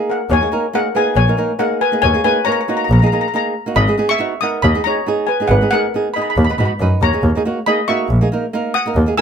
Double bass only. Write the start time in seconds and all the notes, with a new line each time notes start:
0.30 D#2
1.16 A#1
2.03 D#2
2.90 A#1
3.77 G#1
4.63 D#2
5.49 G#1
6.37 D#2
6.58 G#2
6.80 F#2
7.01 D#2
7.22 D#2
8.09 A#1
8.95 D#2